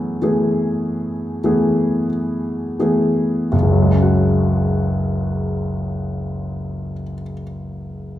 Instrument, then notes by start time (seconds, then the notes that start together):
grand piano
Already playing: E3 A3 B3 G#4 F#5 F#6
0.22 E3 A3 B3 G#4
1.44 E3 A3 B3 G#4
2.79 E3 A3 B3 G#4
3.52 F#1
3.62 C#2
3.72 F#3
3.82 G#3
3.92 C#4
4.02 F#4